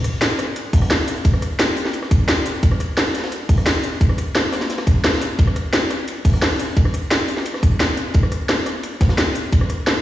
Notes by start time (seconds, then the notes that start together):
0.04 cross-stick, closed hi-hat, ride
0.21 snare, closed hi-hat, ride
0.39 cross-stick, snare, closed hi-hat, ride
0.56 closed hi-hat, ride
0.73 kick, closed hi-hat, open hi-hat
0.82 cross-stick
0.90 snare, closed hi-hat, ride
1.08 closed hi-hat, ride
1.25 kick, closed hi-hat, ride
1.34 cross-stick
1.42 cross-stick, closed hi-hat, ride
1.59 snare, closed hi-hat, ride
1.68 ride
1.76 open hi-hat, ride
1.85 snare
1.93 closed hi-hat, ride
2.03 cross-stick, snare
2.11 kick, closed hi-hat, ride
2.28 snare, closed hi-hat, ride
2.46 snare, closed hi-hat, ride
2.63 kick, closed hi-hat, ride
2.72 cross-stick
2.80 cross-stick, closed hi-hat, ride
2.97 snare, closed hi-hat, ride
3.15 snare, closed hi-hat, ride
3.18 ride
3.24 snare, ride
3.32 closed hi-hat, ride
3.49 kick, closed hi-hat, open hi-hat
3.58 cross-stick
3.66 snare, closed hi-hat, ride
3.84 closed hi-hat, ride
4.01 kick, closed hi-hat, ride
4.09 cross-stick
4.18 cross-stick, closed hi-hat, ride
4.35 snare, closed hi-hat, ride
4.44 ride
4.52 cross-stick, snare, open hi-hat, ride
4.61 snare, ride
4.70 snare, closed hi-hat, ride
4.78 cross-stick, snare, ride
4.86 kick, closed hi-hat, ride
5.04 snare, closed hi-hat, ride
5.08 snare, ride
5.13 snare, ride
5.17 snare, ride
5.21 snare, closed hi-hat, ride
5.39 kick, closed hi-hat, ride
5.47 cross-stick
5.56 cross-stick, closed hi-hat, ride
5.73 snare, closed hi-hat, ride
5.91 cross-stick, snare, closed hi-hat, ride
6.08 closed hi-hat, ride
6.25 kick, closed hi-hat, open hi-hat
6.34 cross-stick
6.42 snare, closed hi-hat, ride
6.59 closed hi-hat, ride
6.77 kick, closed hi-hat, ride
6.85 cross-stick
6.94 cross-stick, closed hi-hat, ride
7.11 snare, closed hi-hat, ride
7.19 ride
7.28 open hi-hat, ride
7.37 snare
7.46 closed hi-hat, ride
7.54 cross-stick, snare
7.63 kick, closed hi-hat, ride
7.80 snare, closed hi-hat, ride
7.97 snare, closed hi-hat, ride
8.14 kick, closed hi-hat, ride
8.23 cross-stick
8.31 cross-stick, closed hi-hat, ride
8.49 snare, closed hi-hat, ride
8.66 cross-stick, snare, closed hi-hat, ride
8.83 closed hi-hat, ride
9.01 kick, snare, closed hi-hat, ride
9.09 cross-stick, snare, ride
9.18 snare, closed hi-hat, ride
9.35 closed hi-hat, ride
9.52 kick, closed hi-hat, ride
9.61 cross-stick
9.70 cross-stick, closed hi-hat, ride
9.87 snare, closed hi-hat, ride
9.96 ride